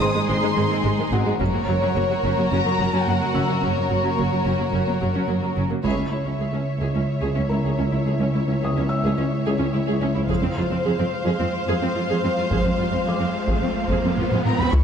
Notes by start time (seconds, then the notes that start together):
Already playing: D#3 G#3 D#4 G#4 C5 D#6
0.01 G#1 G#2 G#3 C4 C5 C6
0.15 G#2 G#3
0.28 G#1 G#2 G#3 C4 C6
0.42 G#2 G#3
0.56 G#1 G#2 D#3 G#3
0.69 G#2 G#3 C4
0.84 G#1 G#2 G#3
0.98 G#2 D#3 G#3
1.12 G#1 G#2 G#3 C4 F#4 F#5
1.26 G#2 G#3
1.40 F#1 F#2 C#3 F#3 A#3 C#4 F#4 A#4 C#5, taiko
1.54 F#2 F#3 A#3
1.68 F#1 F#2 F#3
1.82 F#2 F#3 C#4
1.95 F#1 F#2 F#3 A#3
2.09 F#2 F#3
2.23 F#1 F#2 F#3 C#4, taiko
2.37 F#2 F#3 A#3
2.51 F#1 F#2 F#3 C#4 A#5
2.65 F#2 F#3 A#3
2.80 F#1 F#2 F#3
2.93 F#2 F#3 C#4
3.07 F#1 F#2 F#3 A#3 F#5
3.20 F#2 F#3
3.34 F#1 F#2 F#3 C#4 E6
3.48 F#2 F#3 A#3
3.62 F#1 F#2 F#3 C#4 C#5
3.76 F#2 F#3 A#3
3.90 F#1 F#2 F#3
4.03 F#2 F#3 C#4
4.17 F#1 F#2 F#3 A#3
4.31 F#2 F#3
4.45 F#1 F#2 F#3 C#4
4.58 F#2 F#3 A#3
4.72 F#1 F#2 F#3 C#4
4.87 F#2 F#3 A#3
5.01 F#1 F#2 F#3
5.15 F#2 F#3 C#4
5.28 F#1 F#2 F#3 A#3
5.42 F#2 F#3
5.56 F#1 F#2 F#3 C#4
5.70 F#2 F#3 A#3
5.83 C#2 C#3 G#3 E4 G#4 C#5 E5 B5, taiko
5.98 C#2 C#4
6.11 C#2 E4
6.25 C#2 C#4
6.39 C#2 G#4
6.53 C#2 C#4
6.81 C#2 G#4
6.94 C#2 C#4
7.21 C#2 G#4
7.35 C#2 C#4
7.49 C#2 E4 A#4 A#5
7.64 C#2 G#4
7.78 C#2 C#4
7.92 C#2 E4
8.06 C#2 G#4
8.20 C#2 C#4
8.34 C#2 E4
8.48 C#2 C#4
8.62 C#2 G#4 E5 D#6
8.77 C#2 C#4
8.89 E6
9.04 C#2 G#4
9.18 C#2 C#4
9.46 C#2 G#4
9.59 C#2 C#4
9.73 C#2 E4
9.87 C#2 G#4
10.02 C#2 C#4
10.15 C#2 E4
10.28 F2 F3 G#3 F4 G#4 C5 F5, taiko, riser
10.42 F2 C4
10.57 F2 F4
10.70 F2 C4
10.85 F2 G#4
10.99 F2 C4
11.26 F2 G#4
11.40 F2 C4
11.68 F2 G#4
11.82 F2 C4
11.95 F2 F4
12.09 F2 G#4
12.24 F2 C4
12.38 F2 F4
12.51 F2 G#4, taiko
12.65 F2 C4
12.78 F2 F4
12.92 F2 C4
13.05 F2 G#4 D6
13.20 F2 C4
13.48 F2 G#4, taiko
13.61 F2 C4
13.89 F2 G#4, taiko
14.04 F2 C4
14.17 F2 F4, taiko mid
14.31 F2 G#4, taiko mid
14.45 F2 C4 A#4 A#5, taiko mid
14.59 F2 F4 B4 B5, taiko low
14.72 C#2 E3 G#3 C#4 E4 G#4 B4 C#5 B5 C#6, taiko, impact